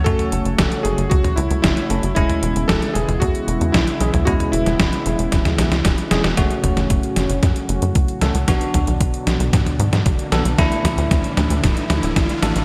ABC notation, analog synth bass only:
X:1
M:4/4
L:1/16
Q:1/4=114
K:F#m
V:1 name="Analog synth bass" clef=bass
F,, z F,,, F,,, F,,, z F,,, F,,, C,, z C,, C,, F,,, z F,,, F,,, | E,,, z E,,, E,,, E,,, z E,,, E,,, E,, z E,,, E,, B,,, z B,,, B,,, | E,, z E,,, E,,, E,,, z E,,, E,,, E,,, z B,,, C,, E,,, z E,,, E,,, | F,,, z F,,, F,,, F,,, z F,,, F,,, F,, z F,,, F,, C,, z C,, C,, |
B,,, z B,,, B,,, B,,, z B,,, B,,, G,, z G,, G,, B,,, z B,,, B,,, | D,, z D,, D,, D,, z D,, D,, D,,, z D,, D,,, A,,, z A,,, A,,, |]